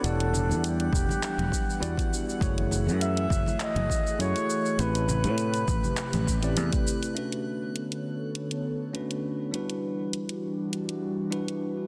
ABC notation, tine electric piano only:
X:1
M:4/4
L:1/16
Q:"Swing 16ths" 1/4=101
K:Bm
V:1 name="Tine electric piano"
[B,EGdf]12 [B,EFGd]2 z2 | [A,EF^Gc]12 [A,EFGc]2 z2 | [A,=CEGB]8- [A,CEGB]3 [A,CEGd]4- [A,CEGd] | [A,CDFB]12 [A,CDFB]2 z2 |
[G,DEFB]12 [G,DEFB]2 z2 |]